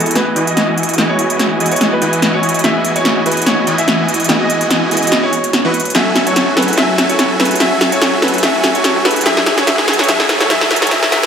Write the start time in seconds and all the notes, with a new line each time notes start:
Already playing: E3 G#3 B3 E4 F#4 A4 D#5 G#5, riser
0.00 closed hi-hat
0.06 closed hi-hat
0.11 closed hi-hat
0.15 B4, snare, closed hi-hat
0.36 E3 E4 F#4 D#5 G#5, closed hi-hat
0.47 D#5, closed hi-hat
0.57 snare, closed hi-hat
0.78 closed hi-hat
0.83 closed hi-hat
0.89 closed hi-hat
0.94 G#3 B3, closed hi-hat
0.98 E3 E4 F#4 D#5 G#5, snare, closed hi-hat
1.09 C#5
1.19 closed hi-hat
1.30 closed hi-hat
1.39 snare, closed hi-hat
1.58 E3 G#3 B3 E4 F#4 D#5 G#5, closed hi-hat
1.66 closed hi-hat
1.71 C#5, closed hi-hat
1.76 closed hi-hat
1.81 snare, closed hi-hat
1.92 B4
2.02 E3 E4 F#4 D#5 G#5, closed hi-hat
2.13 closed hi-hat
2.22 snare, closed hi-hat
2.34 C#5
2.43 closed hi-hat
2.49 closed hi-hat
2.54 closed hi-hat
2.59 G#3 B3, closed hi-hat
2.64 E3 E4 F#4 D#5 E5 G#5, snare, closed hi-hat
2.85 closed hi-hat
2.96 C#5, closed hi-hat
3.05 snare, closed hi-hat
3.24 E3 G#3 B3 E4 F#4 B4 D#5 G#5, closed hi-hat
3.32 closed hi-hat
3.37 closed hi-hat
3.42 closed hi-hat
3.46 C#5, snare, closed hi-hat
3.67 E3 E4 F#4 D#5 G#5, closed hi-hat
3.78 E5, closed hi-hat
3.88 snare, closed hi-hat
4.08 closed hi-hat
4.14 closed hi-hat
4.20 closed hi-hat
4.24 G#3, closed hi-hat
4.29 E3 B3 E4 F#4 D#5 G#5, snare, closed hi-hat
4.41 D#5
4.50 closed hi-hat
4.61 closed hi-hat
4.70 snare, closed hi-hat
4.89 E3 G#3 B3 E4 F#4 D#5 G#5, closed hi-hat
4.97 closed hi-hat
5.03 D#5, closed hi-hat
5.07 closed hi-hat
5.12 snare, closed hi-hat
5.23 C#5
5.33 closed hi-hat
5.44 closed hi-hat
5.53 snare, closed hi-hat
5.65 E3 E4 F#4 B4 D#5 C#6
5.74 closed hi-hat
5.80 closed hi-hat
5.85 closed hi-hat
5.90 A3 C#4, closed hi-hat
5.95 F#3 E4 F#4 A4 E5 G#5, snare, closed hi-hat
6.16 snare, closed hi-hat
6.27 C#5, closed hi-hat
6.36 snare, closed hi-hat
6.55 F#3 A3 C#4 E4 F#4 G#4 A4 B4 E5 G#5, snare, closed hi-hat
6.62 closed hi-hat
6.68 closed hi-hat
6.73 A3, closed hi-hat
6.77 F#3 C#4 E4 F#4 A4 E5 G#5, snare
6.98 snare, closed hi-hat
7.09 C#5, closed hi-hat
7.19 snare, closed hi-hat
7.37 F#3 A3 C#4 E4 F#4 G#4 A4 B4 E5 G#5, snare, closed hi-hat
7.45 closed hi-hat
7.51 closed hi-hat
7.56 A3 C#4, closed hi-hat
7.60 F#3 E4 F#4 A4 E5 G#5, snare, closed hi-hat
7.81 snare, closed hi-hat
7.92 C#5, closed hi-hat
8.02 snare, closed hi-hat
8.20 F#3 A3 C#4 E4 F#4 G#4 A4 B4 E5 G#5, snare, closed hi-hat
8.28 closed hi-hat
8.34 closed hi-hat
8.38 A3 C#4, closed hi-hat
8.43 F#3 E4 F#4 A4 E5 G#5, snare, closed hi-hat
8.64 snare, closed hi-hat
8.75 C#5, closed hi-hat
8.84 snare, closed hi-hat
9.03 F#3 A3 C#4 E4 F#4 A4 B4 E5 G#5, snare, closed hi-hat
9.07 G#4, closed hi-hat
9.16 closed hi-hat
9.21 G#3, closed hi-hat
9.25 F#3 C#4 E4 F#4 G#4 E5 G#5, snare, closed hi-hat
9.37 snare
9.46 snare, closed hi-hat
9.58 C#5, snare, closed hi-hat
9.65 F#3 G#3 C#4 E4 F#4 G#4 E5 G#5, snare, closed hi-hat
9.78 snare
9.88 snare, closed hi-hat
9.93 closed hi-hat
9.99 C#5, snare, closed hi-hat
10.04 G#3, closed hi-hat
10.08 F#3 C#4 E4 F#4 G#4 E5 G#5, snare, closed hi-hat
10.20 snare
10.29 snare, closed hi-hat
10.40 C#5, snare, closed hi-hat
10.48 F#3 G#3 C#4 E4 F#4 G#4 E5 G#5, snare, closed hi-hat
10.61 snare
10.71 snare, closed hi-hat
10.76 closed hi-hat
10.82 C#5, snare, closed hi-hat
10.87 G#3 C#4, closed hi-hat
10.91 F#3 E4 F#4 G#4 E5 G#5, snare, closed hi-hat
11.03 snare
11.10 F#3 G#3 C#4 E4 F#4 G#4 E5 G#5, snare, closed hi-hat